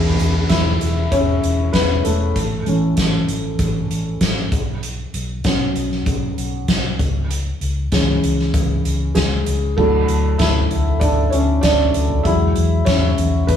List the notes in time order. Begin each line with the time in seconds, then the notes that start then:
Already playing: E1 E3 B3 E4 G#4, downlifter
0.19 E1, closed hi-hat
0.49 E1 E4 E5, kick, snare, closed hi-hat
0.81 E1, closed hi-hat
1.11 E1 C#4 C#5, kick, closed hi-hat
1.43 E1, closed hi-hat
1.73 E1 B3 B4, kick, snare, closed hi-hat
2.04 E1 A3 A4, closed hi-hat
2.36 A1, kick, closed hi-hat
2.66 A1 E3 A3 C#4, closed hi-hat
2.97 A1, kick, snare, closed hi-hat
3.28 A1, closed hi-hat
3.59 A1, kick, closed hi-hat
3.90 A1, closed hi-hat
4.21 A1, kick, snare, closed hi-hat
4.52 B1, kick, closed hi-hat
4.83 closed hi-hat
5.14 B1, closed hi-hat
5.44 B1 F#3 B3 C#4, kick, snare, closed hi-hat
5.76 B1, closed hi-hat
5.91 snare
6.06 B1, kick, closed hi-hat
6.38 B1, closed hi-hat
6.68 B1, kick, snare, closed hi-hat
6.99 C#2, kick, closed hi-hat
7.31 closed hi-hat
7.61 C#2, closed hi-hat
7.92 C#2 E3 G#3 C#4, kick, snare, closed hi-hat
8.23 C#2, closed hi-hat
8.39 snare
8.54 C#2, kick, closed hi-hat
8.85 C#2, closed hi-hat
9.15 C#2 G#3 G#4, kick, snare, closed hi-hat
9.46 C#2, closed hi-hat
9.77 D2 F#3 A3 D4 E4 A4, kick, crash
10.08 D2, closed hi-hat
10.38 D2 E4 E5, kick, snare, closed hi-hat
10.71 D2, closed hi-hat, floor tom
11.00 D2 D4 D5, kick, closed hi-hat
11.30 D2 C#4 C#5, closed hi-hat
11.61 D2 D4 D5, kick, snare, closed hi-hat
11.94 D2, closed hi-hat
12.10 floor tom
12.23 E2 F#3 G#3 E4 E5, kick, closed hi-hat
12.56 E2, closed hi-hat
12.85 E2 C#4 C#5, kick, snare, closed hi-hat
13.18 E2, closed hi-hat, floor tom
13.47 E2 B3 B4, kick, closed hi-hat